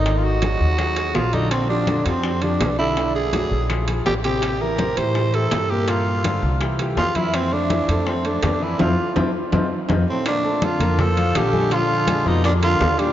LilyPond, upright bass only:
\new Staff \with { instrumentName = "Upright bass" } { \clef bass \time 4/4 \key f \major \tempo 4 = 165 aes,,4. ees,4. bes,,4~ | bes,,4. f,4. b,,4~ | b,,4. bes,,4. a,,4~ | a,,4. a,4. g,4~ |
g,4. c,4. f,4~ | f,4. f,4. f,4 | f,8 r8 f,8 r8 f,8 r8 f,8 r8 | \key bes \major r4. f,4. bes,,4~ |
bes,,4. f,4. ees,4 | }